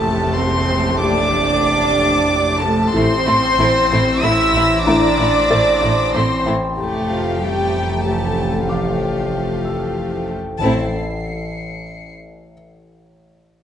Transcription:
Already playing: F1 A1 A3 G4 A4 C5 A5 F6
0.38 C4 C5 C6
1.03 A3 D4 G4 D5 D6
2.61 A3 A4 A5
2.93 A1 A3 C4 E4 C5 C6 E6
3.26 A1 A3 E4 C6
3.58 A1 A3 E4 A#6
3.90 A1 A3 E4
4.22 A1 A3 E4 E5 E6
4.54 A1 A3 E4
4.86 A1 A3 D4 E4 D5 A#5 D6
5.19 A1 A3 E4
5.51 A1 A3 E4 C5 A6
5.82 A1 A3 E4
6.14 A1 A3 C4 E4 C5 C6
6.45 A1 A3 E4 G5
6.77 F1 A1 A3 G4 A4 C5 G5
7.09 F3 F4 F5
7.41 G3 A3 G4 G5
8.05 A3 G4 A4 A5
8.68 F3 A3 F4 G4 F5 D6
9.65 E6
10.60 A1 A3 C4 E4 A4 C5 E5 A5 C7
11.24 C#7

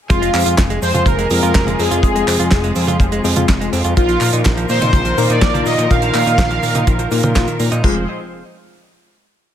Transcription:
0.10 F1 C3 F3 G#3 C4 F4 G#4, kick, closed hi-hat, cabasa
0.22 G#3, closed hi-hat
0.34 F2 C4, clap, open hi-hat, cabasa
0.46 F2 F4, closed hi-hat, cabasa
0.58 F1 F3, kick, snare, clap, closed hi-hat, cabasa
0.70 G#3, closed hi-hat
0.82 F2 C4 C5, open hi-hat, cabasa
0.94 F2 F4, closed hi-hat, high tom, cabasa
1.06 F1 F3 A#4, kick, closed hi-hat, high tom, cabasa
1.19 G#3, closed hi-hat
1.30 F2 G#3 C4 F4 G#4, open hi-hat, cabasa
1.43 F2 F4, closed hi-hat, cabasa
1.55 F1 F3, kick, snare, clap, closed hi-hat, cabasa
1.67 G#3, closed hi-hat, high tom
1.79 F2 C4 G#4, open hi-hat, cabasa
1.91 F2 F4, closed hi-hat, cabasa
2.03 F1 F3 G#3 C4 F4 G#4, kick, closed hi-hat, cabasa
2.15 G#3, closed hi-hat
2.27 F2 C4, clap, open hi-hat, cabasa
2.40 F2 F4, closed hi-hat, cabasa
2.51 F1 F3, kick, snare, clap, closed hi-hat, cabasa
2.64 G#3, closed hi-hat
2.75 F2 C4, open hi-hat, cabasa
2.87 F2 F4, closed hi-hat, high tom, cabasa
3.00 F1 F3, kick, closed hi-hat, cabasa
3.12 G#3, closed hi-hat
3.24 F2 G#3 C4 F4 G#4, open hi-hat, cabasa
3.36 F2 F4, closed hi-hat, high tom, cabasa
3.48 F1 F3, kick, snare, clap, closed hi-hat, cabasa
3.61 G#3, closed hi-hat
3.73 F2 C4, open hi-hat, cabasa
3.84 F2 F4, closed hi-hat, cabasa
3.97 A#1 A#2 D#3 A#3 D#4 F4 A#4, kick, closed hi-hat, cabasa
4.09 F3, closed hi-hat
4.21 A#2 A#3, clap, open hi-hat, cabasa
4.33 A#2 D#4, closed hi-hat, cabasa
4.45 A#1 D#3, kick, snare, clap, closed hi-hat, cabasa
4.57 F3, closed hi-hat
4.69 A#2 A#3 C5, open hi-hat, cabasa
4.81 A#2 D#4, closed hi-hat, high tom, cabasa
4.93 A#1 D#3, kick, closed hi-hat, high tom, cabasa
5.05 F3, closed hi-hat
5.18 A#2 A#3 D#4 F4 A#4, open hi-hat, cabasa
5.30 A#2 D#4 D5, closed hi-hat, cabasa
5.42 A#1 D#3, kick, snare, clap, closed hi-hat, cabasa
5.54 F3, closed hi-hat, high tom
5.66 A#2 A#3 D#5, open hi-hat, cabasa
5.78 A#2 D#4, closed hi-hat, cabasa
5.90 A#1 A#2 D#3 A#3 D#4 F4 A#4 F5, kick, closed hi-hat, cabasa
6.02 F3, closed hi-hat
6.14 A#2 A#3, clap, open hi-hat, cabasa
6.27 A#2 D#4, closed hi-hat, cabasa
6.38 A#1 D#3, kick, snare, clap, closed hi-hat, cabasa
6.51 F3, closed hi-hat
6.63 A#2 A#3, open hi-hat, cabasa
6.75 A#2 D#4, closed hi-hat, high tom, cabasa
6.87 A#1 D#3, kick, closed hi-hat, cabasa
6.99 F3, closed hi-hat
7.11 A#2 A#3 D#4 F4 A#4, open hi-hat, cabasa
7.23 A#2 F3, closed hi-hat, high tom, cabasa
7.35 A#1 F4, kick, snare, clap, closed hi-hat, cabasa
7.48 D#3, closed hi-hat
7.60 A#2 A#3, open hi-hat, cabasa
7.72 A#2 D#4, closed hi-hat, cabasa
7.84 F1 F3 G#3 C4 F4 G#4 C5, kick, splash

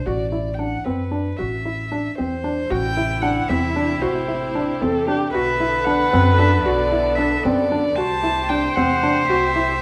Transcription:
0.06 A1 F#4 D5
0.32 E4 D5
0.54 G5
0.59 D4 F#5
0.85 F#2 C4 B4
1.11 D4
1.37 A1 F#4 E5
1.65 E4
1.92 D4
2.18 E2 C4 C5
2.44 D4
2.70 A1 C3 A3 E4 F#4 G4 G5
2.97 E4
3.22 D4 F#5
3.48 E2 C4 E5
3.76 D4
4.01 A1 F#4 C5
4.28 E4
4.55 D4
4.81 E2 C4 A4
5.08 D4 G4
5.33 B1 D3 B3 F#4 A4 B4 E5
5.60 E4
5.85 D4 F#5
6.13 F#2 C4
6.38 D4 E5
6.64 B1 F#4 D5
6.92 E4
7.15 D4 E5
7.44 F#2 C4 D5
7.72 D4
7.96 C2 C3 A3 F#4 G4 C5 A5
8.23 E4
8.49 D4 G5
8.75 E2 C4 F#5
9.03 D4
9.27 C2 F#4 E5
9.56 E4

